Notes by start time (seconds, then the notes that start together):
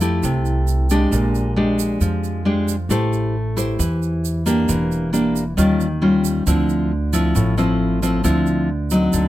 Already playing: F2 F3
0.01 A3 E4 G4, shaker
0.23 C2 C3, shaker
0.45 shaker
0.67 shaker
0.90 G#3 D4 G4, shaker
1.11 A#1 A#2, shaker
1.35 shaker
1.56 G#3 D4 G4
1.79 shaker
2.01 F2 F3, shaker
2.24 shaker
2.45 G#3 D4 G4
2.68 shaker
2.89 A1 A3 E4 G4 C5, shaker
3.13 shaker
3.57 E4 G4 C5, shaker
3.79 E2 E3, shaker
4.03 shaker
4.25 shaker
4.46 A#3 D4 G4, shaker
4.69 E1 E3, shaker
4.92 shaker
5.13 A#3 D4 G4, shaker
5.36 shaker
5.57 D#2 D#3 G3 C#4 F4, shaker
5.80 shaker
6.02 G3 C#4 F4
6.25 shaker
6.47 D2 D3 F3 C4 E4, shaker
6.69 shaker
7.13 F3 C4 E4, shaker
7.35 A1 A2, shaker
7.57 F3 C4 E4, shaker
8.02 F3 C4 E4, shaker
8.24 D2 D3 F3 C4 E4, shaker
8.46 shaker
8.90 F#3 C4 D#4, shaker
9.13 D2 D3, shaker